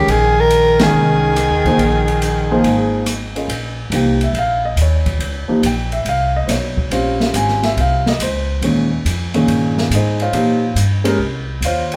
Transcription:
0.00 0.11 C#3 medium
0.00 0.12 G4 medium
0.07 0.89 A#1 medium
0.07 0.38 D#3 medium
0.07 0.42 G#4 medium
0.07 ride medium
0.38 0.80 D#3 medium
0.38 0.81 A#4 medium
0.50 hi-hat pedal soft
0.50 ride medium
0.79 1.33 D#3 medium
0.79 3.03 D#3 medium
0.79 1.33 G#3 medium
0.79 1.33 C#4 medium
0.79 3.04 G#4 medium
0.79 1.34 A#4 medium
0.79 1.34 G5 medium
0.79 snare medium
0.79 ride medium
0.93 1.46 C2 medium
1.36 cross-stick medium
1.36 hi-hat pedal medium
1.36 ride medium
1.50 1.63 D#2 soft
1.64 1.77 C2 medium
1.64 1.77 F3 medium
1.64 1.78 A#3 medium
1.64 1.78 D#4 soft
1.64 1.78 G#4 medium
1.64 1.78 C5 medium
1.64 kick soft
1.64 ride soft
1.78 2.60 A#1 medium
1.78 ride medium
2.08 ride soft
2.22 hi-hat pedal soft
2.22 ride medium
2.51 3.04 F3 medium
2.51 3.04 A#3 medium
2.51 3.04 D#4 medium
2.51 3.05 G#4 medium
2.51 3.05 C5 medium
2.62 3.44 G#1 medium
2.62 ride soft
3.06 cross-stick medium
3.06 hi-hat pedal medium
3.06 ride medium
3.36 3.48 C#4 soft
3.36 3.48 F4 soft
3.36 3.48 G#4 soft
3.36 3.48 A#4 soft
3.36 3.49 D#5 medium
3.36 ride soft
3.48 3.89 A#1 medium
3.48 ride medium
3.90 4.32 C2 medium
3.90 4.18 F3 medium
3.90 4.18 A#3 soft
3.90 4.18 D#4 soft
3.90 4.18 G4 medium
3.90 hi-hat pedal medium
3.90 ride medium
3.96 4.22 G5 medium
4.21 4.33 E5 medium
4.21 ride soft
4.33 4.75 A#1 medium
4.33 4.37 E5 medium
4.33 ride soft
4.39 4.65 F5 medium
4.65 4.78 D#5 medium
4.76 5.18 D#2 medium
4.76 hi-hat pedal soft
4.76 ride medium
4.82 5.47 C#5 medium
5.06 kick medium
5.06 ride soft
5.19 5.46 C#2 medium
5.19 ride medium
5.48 5.61 F3 medium
5.48 5.61 A#3 medium
5.48 5.62 D#4 medium
5.48 5.62 G4 medium
5.48 muted upright bass stroke soft
5.62 6.04 A#1 medium
5.62 hi-hat pedal soft
5.62 ride medium
5.66 5.93 G5 medium
5.92 6.06 E5 medium
5.92 ride soft
6.05 6.47 C2 medium
6.05 6.35 F5 medium
6.05 ride medium
6.36 6.49 D#5 medium
6.46 6.89 B1 medium
6.46 6.49 C5 soft
6.46 snare soft
6.46 hi-hat pedal medium
6.46 ride medium
6.51 6.89 C#5 medium
6.77 kick soft
6.90 7.32 A#1 medium
6.90 8.12 G3 medium
6.90 8.12 C4 medium
6.90 8.11 C#4 medium
6.90 8.12 F4 medium
6.90 ride medium
7.20 snare soft
7.33 7.75 G#1 medium
7.33 7.63 G#5 medium
7.33 hi-hat pedal medium
7.33 ride medium
7.48 snare soft
7.63 7.77 E5 medium
7.63 snare soft
7.63 ride soft
7.76 8.18 C2 medium
7.76 ride soft
7.81 8.07 F5 medium
8.06 8.21 D#5 medium
8.06 snare medium
8.19 8.61 C#2 medium
8.19 8.89 C5 medium
8.19 hi-hat pedal medium
8.19 ride medium
8.62 9.03 D#2 medium
8.62 8.89 A#2 medium
8.62 8.89 D#3 soft
8.62 8.89 G#3 soft
8.62 8.89 C#4 medium
8.62 ride medium
9.05 9.47 F2 medium
9.05 hi-hat pedal soft
9.05 ride medium
9.34 9.88 A#2 medium
9.34 9.88 D#3 medium
9.34 9.89 C#4 medium
9.34 9.88 G#4 medium
9.34 ride soft
9.47 9.89 G2 medium
9.47 ride medium
9.78 snare soft
9.90 10.32 G#2 medium
9.90 hi-hat pedal medium
9.90 ride medium
9.95 10.21 D#4 medium
9.95 10.21 G#4 medium
9.95 10.21 C5 medium
9.95 10.21 D#5 medium
10.20 10.74 F4 medium
10.20 10.74 C5 medium
10.20 10.74 C#5 medium
10.20 10.74 F5 medium
10.20 ride soft
10.32 10.75 A#2 medium
10.32 10.60 F3 medium
10.32 10.60 A#3 medium
10.32 10.60 D#4 medium
10.32 10.60 G4 medium
10.32 ride medium
10.75 11.17 G2 medium
10.75 hi-hat pedal medium
10.75 ride medium
11.04 11.17 G#3 medium
11.04 11.17 C#4 medium
11.04 11.18 G4 medium
11.04 11.18 A#4 medium
11.04 ride medium
11.18 11.60 C2 medium
11.61 11.96 D#2 medium
11.61 hi-hat pedal medium
11.61 ride medium
11.65 11.93 F4 medium
11.65 11.92 C5 medium
11.65 11.92 C#5 medium
11.65 11.92 F5 medium
11.92 ride soft

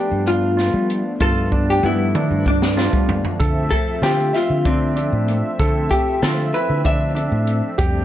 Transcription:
0.00 3.36 F3 medium
0.00 3.36 A3 medium
0.00 3.05 B3 medium
0.00 3.37 B3 medium
0.00 0.48 D4 medium
0.00 3.37 D4 medium
0.00 0.23 G4 medium
0.12 0.70 G2 medium
0.27 0.94 F4 medium
0.27 closed hi-hat medium
0.57 1.11 F4 medium
0.57 snare soft
0.57 closed hi-hat medium
0.74 1.03 G3 medium
0.90 closed hi-hat medium
1.20 1.80 G2 medium
1.20 1.47 F4 medium
1.20 1.70 A4 medium
1.20 kick loud
1.20 closed hi-hat medium
1.52 1.79 D4 medium
1.52 kick medium
1.70 1.85 G4 medium
1.83 2.12 G2 medium
1.83 2.10 B3 medium
1.83 2.47 E4 medium
1.83 high tom medium
2.15 2.68 D4 medium
2.15 mid tom medium
2.31 2.90 G2 medium
2.46 3.14 D4 medium
2.46 kick medium
2.62 snare medium
2.77 3.30 F4 medium
2.77 snare medium
2.93 3.22 G3 medium
2.93 kick medium
3.09 floor tom medium
3.25 floor tom medium
3.40 3.69 D3 medium
3.40 7.75 F3 medium
3.40 7.75 A3 medium
3.40 7.76 C4 medium
3.40 3.93 A4 medium
3.40 7.76 E5 medium
3.40 kick medium
3.40 closed hi-hat medium
3.71 4.00 A4 medium
3.71 kick medium
3.71 closed hi-hat medium
4.02 4.31 D3 medium
4.02 4.29 F4 medium
4.02 4.36 G4 medium
4.02 snare loud
4.02 closed hi-hat medium
4.33 4.67 F4 medium
4.33 4.60 E5 medium
4.33 snare soft
4.33 closed hi-hat medium
4.50 5.09 D3 medium
4.65 5.33 C4 medium
4.65 4.92 D4 medium
4.65 kick medium
4.65 closed hi-hat medium
4.96 5.49 D4 medium
4.96 closed hi-hat medium
5.12 5.41 A2 medium
5.28 closed hi-hat medium
5.59 5.89 D3 medium
5.59 6.13 A4 medium
5.59 kick loud
5.59 closed hi-hat medium
5.91 6.22 G4 medium
5.91 kick medium
5.91 closed hi-hat medium
6.22 6.51 D3 medium
6.22 6.49 F4 medium
6.22 6.55 A4 medium
6.22 snare medium
6.22 closed hi-hat medium
6.54 6.80 E4 medium
6.54 6.85 B4 medium
6.54 closed hi-hat medium
6.70 7.28 D3 medium
6.85 7.11 D4 medium
6.85 7.52 E5 medium
6.85 kick medium
6.85 closed hi-hat medium
7.15 7.69 D4 medium
7.15 closed hi-hat medium
7.32 7.61 A2 medium
7.47 closed hi-hat medium
7.77 8.05 F2 medium
7.77 8.05 G3 medium
7.77 8.05 A3 medium
7.77 8.05 C4 medium
7.77 8.05 D4 medium
7.77 8.05 G4 medium
7.77 kick loud
7.77 closed hi-hat medium

